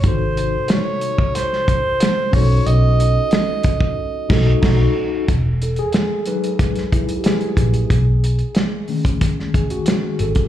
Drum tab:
CC |----------------|----------x-x---|----------------|----------------|
HH |x-x-x-x-x-x-x-o-|x-x-x-x---------|x-xxx-xxxxxxxxxx|x-xxx-oxx-xxx-xx|
SD |----o---oo--o---|----o-----o-o---|----o---oo--o---|----o---oo--o---|
BD |o------o--o---o-|------oo--o-o---|o-------o-o---o-|o------oo-o----o|